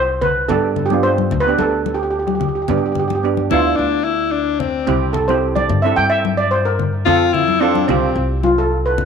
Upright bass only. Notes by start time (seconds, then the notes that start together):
Already playing: C2
0.50 G2
1.32 D2
1.60 D2
2.69 G2
3.51 D2
3.78 D2
4.87 C2
5.70 G2
5.97 G2
7.07 F2
7.88 C2
8.15 C2